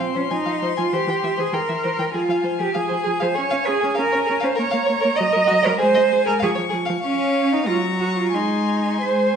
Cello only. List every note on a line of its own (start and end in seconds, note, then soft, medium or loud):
0.00 0.18 C4 soft
0.16 0.31 C#4 soft
0.32 0.77 D#4 soft
0.79 0.94 F4 soft
0.93 1.41 G4 medium
1.39 1.55 G#4 medium
1.54 2.14 A#4 medium
2.15 2.59 F4 medium
2.61 2.75 G4 medium
2.75 3.23 G#4 medium
3.22 3.37 C5 medium
3.36 3.68 C#5 medium
3.67 3.97 G#4 medium
3.98 4.45 A#4 medium
4.44 4.58 C5 medium
4.58 5.19 C#5 medium
5.18 5.68 D#5 medium
5.66 5.80 A#4 medium
5.80 6.25 C5 medium
6.27 6.33 A#4 medium
6.42 6.50 G#4 medium
7.04 7.54 C#4 medium
7.53 7.67 D#4 medium
7.67 7.75 F4 medium
8.00 8.16 F#4 medium
8.18 8.36 F4 medium
8.35 9.00 D#4 soft
9.01 9.36 C5 medium